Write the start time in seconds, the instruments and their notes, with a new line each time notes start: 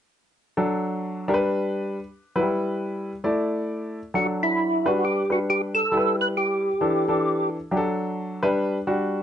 0.57 grand piano F#3 D4 A4
1.28 grand piano G3 D4 A#4
1.34 grand piano B4
2.36 grand piano F#3 E4 B4
2.41 grand piano G3
3.24 grand piano A3 E4 D5
4.14 grand piano F#3 D4 A4, tonewheel organ F#4
4.43 tonewheel organ E4
4.86 grand piano G3 D4 B4, tonewheel organ F#4
5.05 tonewheel organ G4
5.30 grand piano G3 D4 B4, tonewheel organ F#4
5.50 tonewheel organ G4
5.75 tonewheel organ A4
5.92 grand piano G3 E4 A4
5.97 grand piano B4
6.21 tonewheel organ B4
6.37 tonewheel organ G4
6.81 grand piano E3 D4 A4
7.08 grand piano E3 D4 A4
7.71 grand piano F#3 D4 G4
7.77 grand piano A4
8.43 grand piano G3 D4 B4
8.87 grand piano G3 D4 F#4